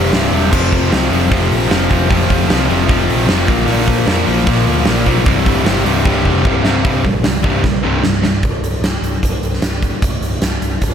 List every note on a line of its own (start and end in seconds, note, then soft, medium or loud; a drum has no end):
0.00 0.12 C2 loud
0.00 0.13 G2 loud
0.00 0.14 C3 loud
0.13 0.30 C1 medium
0.13 0.31 C2 medium
0.13 0.31 G2 medium
0.13 0.32 C3 medium
0.13 snare loud
0.13 open hi-hat loud
0.32 0.49 E1 loud
0.32 0.51 C2 medium
0.32 0.51 G2 medium
0.32 0.52 C3 medium
0.32 open hi-hat medium
0.52 0.70 F1 medium
0.52 0.91 F2 loud
0.52 0.91 C3 medium
0.52 0.93 F3 loud
0.52 kick loud
0.52 crash loud
0.72 0.89 F1 medium
0.72 kick medium
0.72 open hi-hat medium
0.92 1.09 C2 loud
0.92 1.09 F2 medium
0.92 1.10 C3 medium
0.92 1.11 F3 medium
0.92 snare loud
0.92 open hi-hat medium
1.10 1.28 F1 medium
1.10 1.29 F2 medium
1.10 1.30 C3 medium
1.10 1.31 F3 medium
1.10 open hi-hat medium
1.30 1.48 F1 loud
1.30 1.68 F2 loud
1.30 1.69 C3 loud
1.30 1.71 F3 loud
1.30 kick loud
1.30 open hi-hat medium
1.51 1.68 A#1 loud
1.51 open hi-hat medium
1.69 1.88 F1 medium
1.69 1.89 F2 medium
1.69 1.89 C3 medium
1.69 1.91 F3 medium
1.69 snare loud
1.69 open hi-hat medium
1.90 2.08 F1 medium
1.90 2.08 F2 medium
1.90 2.08 C3 medium
1.90 2.10 F3 medium
1.90 kick medium
1.90 open hi-hat medium
2.09 2.27 F1 medium
2.09 2.48 F2 medium
2.09 2.48 C3 medium
2.09 2.50 F3 loud
2.09 kick loud
2.09 open hi-hat medium
2.30 2.47 F1 loud
2.30 kick medium
2.30 open hi-hat medium
2.49 2.67 C2 loud
2.49 2.67 F2 medium
2.49 2.67 C3 medium
2.49 2.69 F3 medium
2.49 snare loud
2.49 open hi-hat medium
2.68 2.86 F1 medium
2.68 2.86 F2 medium
2.68 2.87 C3 loud
2.68 2.87 F3 medium
2.68 open hi-hat medium
2.87 3.06 F1 loud
2.87 3.26 F2 loud
2.87 3.27 C3 loud
2.87 3.27 F3 loud
2.87 kick loud
2.87 open hi-hat medium
3.10 3.26 A#1 medium
3.10 open hi-hat medium
3.27 3.46 F1 medium
3.27 3.46 F2 medium
3.27 3.47 C3 medium
3.27 3.46 F3 medium
3.27 snare loud
3.27 open hi-hat medium
3.47 3.65 A#1 loud
3.47 3.65 A#2 medium
3.47 3.66 F3 medium
3.47 3.66 A#3 loud
3.47 kick loud
3.47 open hi-hat medium
3.66 3.85 A#1 medium
3.66 4.06 A#2 loud
3.66 4.06 F3 medium
3.66 4.07 A#3 loud
3.66 open hi-hat loud
3.88 4.05 A#1 medium
3.88 kick medium
3.88 open hi-hat medium
4.07 4.24 F2 medium
4.07 4.26 A#2 medium
4.07 4.27 F3 medium
4.07 4.27 A#3 medium
4.07 snare loud
4.07 open hi-hat medium
4.27 4.44 A#1 medium
4.27 4.46 A#2 medium
4.27 4.46 F3 medium
4.27 4.47 A#3 loud
4.27 open hi-hat medium
4.47 4.64 A#1 loud
4.47 4.86 A#2 loud
4.47 4.86 F3 medium
4.47 4.87 A#3 loud
4.47 kick loud
4.47 open hi-hat medium
4.66 4.84 D2 medium
4.66 open hi-hat medium
4.85 5.04 A#1 medium
4.85 5.04 A#2 medium
4.85 5.05 F3 medium
4.85 5.06 A#3 loud
4.85 snare loud
4.85 open hi-hat medium
5.06 5.23 B1 medium
5.06 5.24 A#2 medium
5.06 5.25 F3 medium
5.06 5.25 A#3 medium
5.06 kick medium
5.06 open hi-hat medium
5.25 5.43 C1 medium
5.25 5.64 C2 loud
5.25 5.65 G2 loud
5.25 5.65 C3 loud
5.25 kick loud
5.25 open hi-hat medium
5.46 5.63 C1 loud
5.46 kick medium
5.46 open hi-hat medium
5.65 5.82 G1 loud
5.65 5.83 C2 medium
5.65 5.84 G2 medium
5.65 5.85 C3 medium
5.65 snare loud
5.65 open hi-hat medium
5.84 6.02 C1 medium
5.84 6.03 C2 medium
5.84 6.04 G2 loud
5.84 6.04 C3 medium
5.84 open hi-hat medium
6.04 6.22 C1 loud
6.04 6.43 C2 medium
6.04 6.44 G2 medium
6.04 6.44 C3 loud
6.04 kick loud
6.25 6.42 F1 medium
6.25 kick medium
6.44 6.62 C1 medium
6.44 6.63 C2 medium
6.44 6.63 G2 medium
6.44 6.64 C3 medium
6.44 kick loud
6.64 6.81 C1 medium
6.64 6.83 C2 medium
6.64 6.83 G2 medium
6.64 6.84 C3 medium
6.64 snare medium
6.84 7.03 C1 medium
6.84 7.03 C2 medium
6.84 7.03 G2 medium
6.84 7.04 C3 medium
6.84 kick loud
6.84 open hi-hat medium
7.04 7.23 A#1 medium
7.04 7.22 C2 medium
7.04 7.22 G2 medium
7.04 kick medium
7.24 7.42 C1 medium
7.24 7.41 C2 medium
7.24 7.42 G2 medium
7.24 snare loud
7.24 open hi-hat medium
7.42 7.62 C1 medium
7.42 7.62 C2 medium
7.42 7.62 G2 medium
7.42 7.62 C3 medium
7.42 kick medium
7.64 7.82 A#1 loud
7.64 7.81 C2 medium
7.64 7.82 G2 medium
7.64 kick medium
7.64 snare medium
7.83 8.03 C1 medium
7.83 8.00 C2 medium
7.83 8.01 G2 medium
7.83 8.02 C3 medium
8.02 8.41 C1 medium
8.02 8.20 C2 medium
8.02 8.20 G2 medium
8.02 snare medium
8.22 8.40 C2 medium
8.22 8.41 G2 medium
8.22 snare medium
8.43 8.56 C1 medium
8.43 kick loud
8.43 closed hi-hat medium
8.62 8.75 C1 medium
8.62 closed hi-hat medium
8.82 8.95 C1 medium
8.82 snare medium
8.82 closed hi-hat medium
9.03 9.15 C1 medium
9.03 closed hi-hat medium
9.23 9.36 C1 medium
9.23 kick medium
9.23 closed hi-hat medium
9.43 9.55 C1 medium
9.43 closed hi-hat soft
9.53 snare soft
9.62 9.88 C1 medium
9.62 snare loud
9.62 closed hi-hat medium
9.82 kick medium
9.82 closed hi-hat medium
10.02 10.15 C1 medium
10.02 kick loud
10.02 closed hi-hat medium
10.21 10.34 C1 medium
10.21 closed hi-hat medium
10.42 10.55 C1 medium
10.42 snare medium
10.42 closed hi-hat medium
10.62 10.74 C1 medium
10.62 closed hi-hat medium
10.82 10.94 C1 medium
10.82 kick medium
10.82 closed hi-hat medium